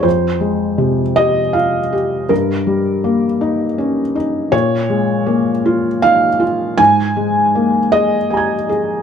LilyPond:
<<
  \new Staff \with { instrumentName = "Felt piano" } { \time 3/4 \key f \minor \tempo 4 = 80 << { r2. | r2. | r2. | r2 <aes'' bes'' aes'''>4 | } \\ { c''4. ees''8 f''4 | bes'2~ bes'8 r8 | des''2 f''4 | aes''4. ees''4. | } >> }
  \new Staff \with { instrumentName = "Felt piano" } { \time 3/4 \key f \minor f,8 aes8 c8 g'8 f'8 g'8 | g,8 g8 bes8 ees'8 des'8 ees'8 | bes,8 aes8 bes8 f'8 ees'8 f'8 | aes,8 aes8 bes8 aes'8 g'8 aes'8 | }
>>